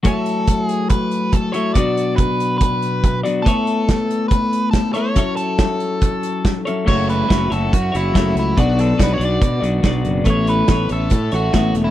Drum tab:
CC |--------|--------|--------|--------|
HH |xxxxxxxx|xxxxxxxx|xxxxxxxx|xxxxxxxx|
SD |--------|--------|--o---o-|--o---o-|
BD |o-o-o-o-|o-o-o-o-|o-o-o-o-|o-o-o-o-|

CC |x-------|--------|--------|
HH |-xxxxxxx|xxxxxxxx|xxxxxxxx|
SD |--o---o-|--o---o-|--o---o-|
BD |o-o-o-o-|o-o-o-o-|o-o-o-o-|